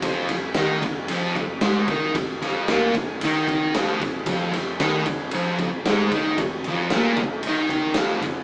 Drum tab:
RD |xxxxxxxx|xxxxxxxx|xxxxxxxx|xxxxxxxx|
SD |-oo---o-|-oo---o-|-oo---o-|--o---o-|
BD |o--o-o-o|o--o-o-o|o--o-o-o|o--o-o-o|